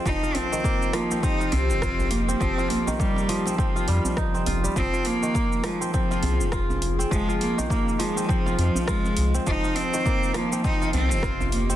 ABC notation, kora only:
X:1
M:4/4
L:1/16
Q:"Swing 16ths" 1/4=102
K:Fm
V:1 name="Kora"
F, F2 E, B, z F, C C F3 F z2 C | F, F2 E, B, z F, C C F G, z E C F G, | F, F2 E, B, z F, C C F3 F z2 C | F, F2 E, B, z F, C C F3 F z2 C |
F, F2 E, B, z F, C C F3 F z2 C |]